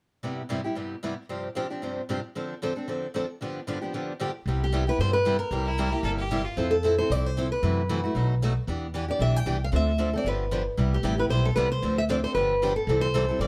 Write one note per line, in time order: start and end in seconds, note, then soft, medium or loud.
0.23 0.41 G2 medium
0.23 0.41 C3 medium
0.23 0.41 G3 medium
0.23 0.41 B3 medium
0.23 0.42 E4 medium
0.23 0.42 G4 medium
0.49 0.59 G2 medium
0.49 0.59 C3 medium
0.49 0.60 G3 medium
0.49 0.60 B3 medium
0.49 0.60 E4 medium
0.49 0.60 G4 medium
0.64 0.75 G3 soft
0.64 0.75 B3 soft
0.64 0.75 E4 soft
0.64 0.76 G4 soft
0.75 0.94 G2 soft
0.75 0.94 C3 soft
0.75 0.94 G3 soft
0.75 0.94 B3 medium
0.75 0.94 E4 soft
0.75 0.94 G4 medium
1.03 1.12 G2 medium
1.03 1.13 C3 medium
1.03 1.13 G3 medium
1.03 1.13 B3 medium
1.03 1.13 E4 medium
1.03 1.13 G4 medium
1.29 1.47 G2 soft
1.29 1.47 C3 medium
1.29 1.47 F3 medium
1.29 1.47 C4 medium
1.29 1.47 D4 medium
1.29 1.48 G4 medium
1.55 1.65 G2 medium
1.55 1.66 C3 medium
1.55 1.66 F3 medium
1.55 1.66 C4 medium
1.55 1.66 D4 medium
1.55 1.66 G4 medium
1.70 1.82 F3 soft
1.70 1.82 C4 soft
1.70 1.82 D4 soft
1.70 1.81 G4 soft
1.82 2.00 G2 soft
1.82 2.00 C3 medium
1.82 2.00 F3 medium
1.82 2.00 C4 medium
1.82 2.01 D4 medium
1.82 2.01 G4 soft
2.09 2.18 G2 medium
2.09 2.19 C3 medium
2.09 2.19 F3 medium
2.09 2.19 C4 medium
2.09 2.19 D4 medium
2.09 2.19 G4 medium
2.35 2.53 D3 medium
2.35 2.53 F3 medium
2.35 2.53 C4 medium
2.35 2.54 D4 medium
2.35 2.54 A4 medium
2.62 2.71 D3 medium
2.62 2.72 F3 medium
2.62 2.72 C4 medium
2.62 2.72 D4 medium
2.62 2.72 A4 medium
2.76 2.88 C4 soft
2.76 2.87 D4 soft
2.76 2.87 A4 soft
2.88 3.06 D3 medium
2.88 3.06 F3 soft
2.88 3.06 C4 medium
2.88 3.06 D4 medium
2.88 3.06 A4 medium
3.14 3.24 D3 medium
3.14 3.24 F3 medium
3.14 3.25 C4 medium
3.14 3.25 D4 medium
3.14 3.25 A4 medium
3.41 3.59 G2 medium
3.41 3.59 D3 medium
3.41 3.59 F3 medium
3.41 3.59 B3 medium
3.41 3.59 D4 medium
3.41 3.59 G4 medium
3.67 3.77 G2 medium
3.67 3.77 D3 medium
3.67 3.77 F3 medium
3.67 3.77 B3 medium
3.67 3.78 D4 medium
3.67 3.78 G4 medium
3.81 3.93 F3 soft
3.81 3.93 B3 soft
3.81 3.93 D4 soft
3.81 3.93 G4 soft
3.94 4.11 G2 soft
3.94 4.12 D3 medium
3.94 4.12 F3 medium
3.94 4.12 B3 medium
3.94 4.12 D4 medium
3.94 4.12 G4 medium
4.19 4.30 G2 medium
4.19 4.30 D3 medium
4.19 4.30 F3 medium
4.19 4.30 B3 medium
4.19 4.30 D4 medium
4.19 4.30 G4 medium
4.46 4.88 C2 medium
4.46 4.65 C3 medium
4.46 4.65 G3 medium
4.46 4.65 B3 medium
4.46 4.65 E4 medium
4.46 4.65 G4 medium
4.64 4.89 G4 medium
4.72 4.82 C3 medium
4.72 4.82 G3 medium
4.72 4.83 B3 medium
4.72 4.83 E4 medium
4.72 4.83 G4 medium
4.87 4.99 B3 soft
4.87 4.99 E4 soft
4.87 4.98 G4 soft
4.87 5.00 B4 medium
4.99 5.41 G2 medium
4.99 5.17 C3 soft
4.99 5.17 G3 medium
4.99 5.18 B3 medium
4.99 5.18 E4 medium
4.99 5.18 G4 medium
4.99 5.13 C5 medium
5.13 5.38 B4 medium
5.25 5.35 C3 medium
5.25 5.35 G3 medium
5.25 5.36 B3 medium
5.25 5.36 E4 medium
5.25 5.36 G4 medium
5.39 6.14 A#4 medium
5.51 5.93 C2 medium
5.51 5.69 C3 medium
5.51 5.70 G3 medium
5.51 5.70 A#3 medium
5.51 5.70 E4 medium
5.51 5.70 G4 medium
5.65 5.94 E4 medium
5.78 5.88 C3 medium
5.78 5.88 G3 medium
5.78 5.88 A#3 medium
5.78 5.88 E4 medium
5.78 5.88 G4 medium
5.91 6.04 A#3 soft
5.91 6.04 E4 soft
5.91 6.03 G4 soft
5.91 6.03 G4 medium
6.03 6.46 G1 medium
6.03 6.22 C3 medium
6.03 6.22 G3 medium
6.03 6.23 A#3 medium
6.03 6.23 E4 medium
6.03 6.23 G4 medium
6.03 6.11 A4 medium
6.19 6.46 G4 medium
6.31 6.41 C3 medium
6.31 6.41 G3 medium
6.31 6.41 A#3 medium
6.31 6.41 E4 medium
6.31 6.41 G4 medium
6.45 6.64 F4 medium
6.57 6.99 F2 medium
6.57 6.75 F3 medium
6.57 6.75 C4 medium
6.57 6.75 E4 medium
6.57 6.75 A4 medium
6.71 6.96 A4 medium
6.83 6.93 F3 medium
6.83 6.94 C4 medium
6.83 6.94 E4 medium
6.83 6.94 A4 medium
6.98 7.10 C4 soft
6.98 7.10 E4 soft
6.98 7.10 A4 medium
6.98 7.12 C5 medium
7.10 7.52 C2 medium
7.10 7.28 F3 medium
7.10 7.28 C4 medium
7.10 7.29 E4 medium
7.10 7.29 A4 medium
7.10 7.26 D5 medium
7.26 7.51 C5 medium
7.37 7.46 F3 medium
7.37 7.47 C4 medium
7.37 7.47 E4 medium
7.37 7.47 A4 medium
7.52 8.26 B4 medium
7.62 8.04 F#2 medium
7.62 7.80 C3 medium
7.62 7.81 E3 medium
7.62 7.81 A3 medium
7.62 7.81 E4 medium
7.62 7.81 F#4 medium
7.89 7.99 C3 medium
7.89 7.99 E3 medium
7.89 7.99 A3 medium
7.89 7.99 E4 medium
7.89 8.00 F#4 medium
8.04 8.15 A3 soft
8.04 8.15 E4 soft
8.04 8.15 F#4 soft
8.15 8.57 B1 medium
8.15 8.33 B2 medium
8.15 8.33 F#3 medium
8.15 8.33 A3 medium
8.15 8.34 D#4 medium
8.15 8.34 F#4 medium
8.42 8.52 B2 medium
8.42 8.52 F#3 medium
8.42 8.52 A3 medium
8.42 8.52 D#4 medium
8.42 8.52 F#4 medium
8.67 9.09 E2 medium
8.67 8.86 E3 medium
8.67 8.86 B3 medium
8.67 8.86 D4 medium
8.67 8.86 G4 medium
8.94 9.04 E3 medium
8.94 9.04 B3 medium
8.94 9.04 D4 medium
8.94 9.04 G4 medium
9.08 9.19 B3 soft
9.08 9.20 D4 soft
9.08 9.20 G4 soft
9.08 9.22 D5 medium
9.19 9.42 B1 medium
9.19 9.38 E3 medium
9.19 9.38 B3 medium
9.19 9.38 D4 medium
9.19 9.39 G4 medium
9.19 9.36 E5 medium
9.36 9.62 G5 medium
9.46 9.69 C2 medium
9.46 9.56 E3 medium
9.46 9.56 B3 medium
9.46 9.56 D4 medium
9.46 9.56 G4 medium
9.64 9.69 F5 medium
9.72 10.15 D2 medium
9.72 9.90 D3 medium
9.72 9.90 F3 medium
9.72 9.91 C4 medium
9.72 9.91 D4 medium
9.72 9.91 A4 medium
9.76 10.16 E5 medium
9.98 10.08 D3 medium
9.98 10.09 F3 medium
9.98 10.09 C4 medium
9.98 10.09 D4 medium
9.98 10.09 A4 medium
10.13 10.26 C4 soft
10.13 10.26 D4 soft
10.13 10.25 A4 medium
10.17 10.27 D5 medium
10.24 10.67 G1 medium
10.24 10.43 D3 medium
10.24 10.44 F3 medium
10.24 10.44 B3 medium
10.24 10.44 D4 medium
10.24 10.44 G4 medium
10.24 10.64 B4 medium
10.51 10.61 D3 medium
10.51 10.61 F3 medium
10.51 10.61 B3 medium
10.51 10.62 D4 medium
10.51 10.62 G4 medium
10.77 10.99 C2 medium
10.77 10.95 C3 medium
10.77 10.96 G3 medium
10.77 10.96 B3 medium
10.77 10.96 E4 medium
10.77 10.96 G4 medium
10.94 11.20 G4 medium
11.03 11.26 A1 medium
11.03 11.13 C3 medium
11.03 11.14 G3 medium
11.03 11.14 B3 medium
11.03 11.14 E4 medium
11.03 11.14 G4 medium
11.18 11.30 B3 soft
11.18 11.30 E4 soft
11.18 11.29 G4 soft
11.18 11.24 B4 medium
11.29 11.52 B1 medium
11.29 11.48 C3 medium
11.29 11.49 G3 medium
11.29 11.49 B3 medium
11.29 11.49 E4 medium
11.29 11.49 G4 medium
11.29 11.45 C5 medium
11.45 11.56 A4 medium
11.56 11.79 C2 medium
11.56 11.66 C3 medium
11.56 11.66 G3 medium
11.56 11.67 B3 loud
11.56 11.67 E4 medium
11.56 11.67 G4 medium
11.56 11.71 B4 medium
11.72 11.96 C5 medium
11.82 12.24 D2 medium
11.82 12.00 D3 medium
11.82 12.01 F3 medium
11.82 12.01 C4 medium
11.82 12.01 D4 medium
11.82 12.01 A4 medium
11.98 12.03 E5 medium
12.09 12.19 D3 medium
12.09 12.19 F3 medium
12.09 12.19 C4 medium
12.09 12.19 D4 medium
12.09 12.19 A4 medium
12.09 12.15 D5 medium
12.24 12.36 C4 soft
12.24 12.36 D4 soft
12.24 12.35 A4 medium
12.24 12.34 C5 medium
12.35 12.77 G1 medium
12.35 12.53 D3 medium
12.35 12.54 F3 medium
12.35 12.54 B3 medium
12.35 12.54 D4 medium
12.35 12.54 G4 medium
12.35 12.72 B4 medium
12.62 12.71 D3 medium
12.62 12.72 F3 medium
12.62 12.72 B3 medium
12.62 12.72 D4 medium
12.62 12.72 G4 medium
12.76 13.03 A4 medium
12.87 13.29 C2 medium
12.87 13.06 C3 medium
12.87 13.06 E3 medium
12.87 13.06 G3 medium
12.87 13.06 C4 medium
12.87 13.06 E4 medium
12.87 13.06 A4 medium
13.01 13.40 C5 medium
13.14 13.24 C3 medium
13.14 13.24 E3 medium
13.14 13.24 G3 medium
13.14 13.24 C4 medium
13.14 13.24 E4 loud
13.14 13.24 A4 loud
13.29 13.39 G3 soft
13.29 13.40 C4 medium
13.29 13.40 E4 soft
13.29 13.39 A4 medium
13.39 13.47 G1 medium
13.39 13.47 C3 medium
13.39 13.47 E3 medium
13.39 13.47 G3 medium
13.39 13.47 C4 medium
13.39 13.47 E4 medium
13.39 13.47 A4 medium
13.39 13.47 D5 medium